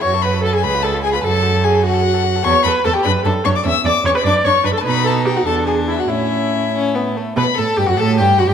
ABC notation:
X:1
M:6/8
L:1/16
Q:3/8=99
K:F#dor
V:1 name="Violin"
c'2 b2 a g b2 a2 g b | a4 g2 f6 | [K:D] c'2 b2 a g b2 a2 c' d' | e'2 d'2 c' b d'2 c'2 b a |
b2 a2 g f a2 ^g2 e f | e8- e2 z2 | b2 a2 g f a2 g2 f g |]
V:2 name="Viola"
c2 B2 A G B2 A2 G B | A4 G2 F6 | [K:D] c2 B2 A G B2 A2 c d | e2 d2 c B d2 c2 B A |
B2 A2 G F A2 ^G2 E F | E8- E2 z2 | B2 A2 G F A2 G2 F G |]
V:3 name="Violin"
F A F A F A G ^E G E G E | F A F A F A F A F A F A | [K:D] A2 A2 A2 D2 D2 D2 | C2 C2 C2 D2 D2 D2 |
^D6 =D6 | C6 C2 B,2 A,2 | B2 A2 G F A2 G2 F G |]
V:4 name="Cello" clef=bass
F,,6 C,,6 | F,,12 | [K:D] E,,2 E,,2 E,,2 F,,2 F,,2 F,,2 | E,,2 E,,2 E,,2 F,,2 F,,2 F,,2 |
B,,6 E,,6 | A,,8- A,,2 z2 | B,,2 A,,2 G,, F,, A,,2 G,,2 F,, G,, |]